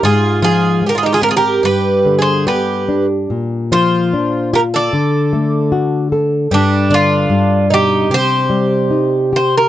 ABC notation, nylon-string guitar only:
X:1
M:2/4
L:1/8
Q:1/4=74
K:Gphr
V:1 name="Nylon-string guitar" clef=bass
A,, F, A, C | G,, D, =B, D | B,, F, D F | D, =A, ^F =A |
G,, D, G,, =B,, | C, G, E G |]